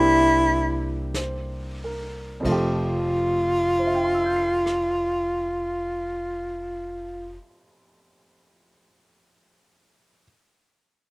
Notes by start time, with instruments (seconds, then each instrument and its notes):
Already playing: upright bass C2, grand piano A#3 C4 D4 E4 G4, tenor saxophone E4
1.14 grand piano C5, brush sweep, snare, hi-hat pedal
1.84 grand piano A#4
2.40 grand piano F2 F3
2.45 upright bass F1, grand piano A3, tenor saxophone F4, kick, ride
2.49 grand piano F4 G4
3.79 grand piano C5
3.87 grand piano E5
3.95 grand piano G5
4.04 grand piano C6
4.14 grand piano E6
4.24 grand piano G6
4.36 grand piano C7
4.66 cross-stick